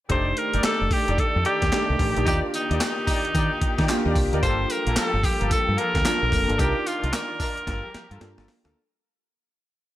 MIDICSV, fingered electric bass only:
0, 0, Header, 1, 3, 480
1, 0, Start_track
1, 0, Key_signature, -2, "minor"
1, 0, Tempo, 540541
1, 91, Time_signature, 4, 2, 24, 8
1, 8840, End_track
2, 0, Start_track
2, 0, Title_t, "Fingered electric bass"
2, 0, Program_c, 0, 33
2, 91, Note_on_c, 0, 29, 108
2, 283, Note_off_c, 0, 29, 0
2, 480, Note_on_c, 0, 31, 92
2, 552, Note_off_c, 0, 31, 0
2, 722, Note_on_c, 0, 29, 96
2, 793, Note_off_c, 0, 29, 0
2, 964, Note_on_c, 0, 29, 90
2, 1035, Note_off_c, 0, 29, 0
2, 1207, Note_on_c, 0, 41, 95
2, 1276, Note_off_c, 0, 41, 0
2, 1443, Note_on_c, 0, 39, 93
2, 1514, Note_off_c, 0, 39, 0
2, 1686, Note_on_c, 0, 36, 97
2, 1756, Note_off_c, 0, 36, 0
2, 1772, Note_on_c, 0, 33, 107
2, 1892, Note_off_c, 0, 33, 0
2, 1930, Note_on_c, 0, 34, 103
2, 1998, Note_off_c, 0, 34, 0
2, 2014, Note_on_c, 0, 39, 107
2, 2133, Note_off_c, 0, 39, 0
2, 2404, Note_on_c, 0, 39, 86
2, 2474, Note_off_c, 0, 39, 0
2, 2975, Note_on_c, 0, 51, 114
2, 3094, Note_off_c, 0, 51, 0
2, 3365, Note_on_c, 0, 51, 98
2, 3435, Note_off_c, 0, 51, 0
2, 3603, Note_on_c, 0, 39, 97
2, 3674, Note_off_c, 0, 39, 0
2, 3691, Note_on_c, 0, 36, 90
2, 3811, Note_off_c, 0, 36, 0
2, 3843, Note_on_c, 0, 38, 92
2, 3914, Note_off_c, 0, 38, 0
2, 3936, Note_on_c, 0, 31, 114
2, 4126, Note_off_c, 0, 31, 0
2, 4324, Note_on_c, 0, 34, 90
2, 4394, Note_off_c, 0, 34, 0
2, 4564, Note_on_c, 0, 31, 99
2, 4634, Note_off_c, 0, 31, 0
2, 4809, Note_on_c, 0, 31, 92
2, 4877, Note_off_c, 0, 31, 0
2, 5048, Note_on_c, 0, 43, 95
2, 5117, Note_off_c, 0, 43, 0
2, 5284, Note_on_c, 0, 38, 103
2, 5355, Note_off_c, 0, 38, 0
2, 5529, Note_on_c, 0, 34, 90
2, 5597, Note_off_c, 0, 34, 0
2, 5616, Note_on_c, 0, 29, 92
2, 5734, Note_off_c, 0, 29, 0
2, 5772, Note_on_c, 0, 31, 100
2, 5839, Note_off_c, 0, 31, 0
2, 5855, Note_on_c, 0, 36, 127
2, 5974, Note_off_c, 0, 36, 0
2, 6249, Note_on_c, 0, 36, 101
2, 6317, Note_off_c, 0, 36, 0
2, 6814, Note_on_c, 0, 31, 102
2, 6933, Note_off_c, 0, 31, 0
2, 7202, Note_on_c, 0, 43, 96
2, 7273, Note_off_c, 0, 43, 0
2, 7293, Note_on_c, 0, 43, 100
2, 7412, Note_off_c, 0, 43, 0
2, 7444, Note_on_c, 0, 31, 98
2, 7515, Note_off_c, 0, 31, 0
2, 7684, Note_on_c, 0, 38, 103
2, 7755, Note_off_c, 0, 38, 0
2, 8840, End_track
3, 0, Start_track
3, 0, Title_t, "Muted fingered electric bass strokes"
3, 572, Note_on_c, 9, 29, 45
3, 661, Note_off_c, 9, 29, 0
3, 3214, Note_on_c, 9, 29, 52
3, 3303, Note_off_c, 9, 29, 0
3, 4894, Note_on_c, 9, 29, 45
3, 4982, Note_off_c, 9, 29, 0
3, 7058, Note_on_c, 9, 29, 52
3, 7146, Note_off_c, 9, 29, 0
3, 8840, End_track
0, 0, End_of_file